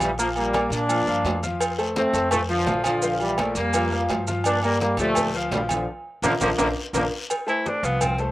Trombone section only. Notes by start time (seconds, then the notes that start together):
0.04 E3 G3
0.19 F3 A#3
0.37 G3 A#3
0.72 A#3 D4
1.97 A3 C4
2.32 F3 A3
2.50 D3 F3
2.85 D3 F3
3.22 E3 G3
3.40 F3 A3
3.57 G3 A#3
4.46 A#3 D4
4.64 G3 A#3
4.81 G3 A#3
4.99 F3 A3
5.52 D3 G3
5.71 D3 F3
6.24 D3 F3 A#3
6.41 D3 F3 A#3
6.59 D3 F3 A#3
6.95 D3 F3 A#3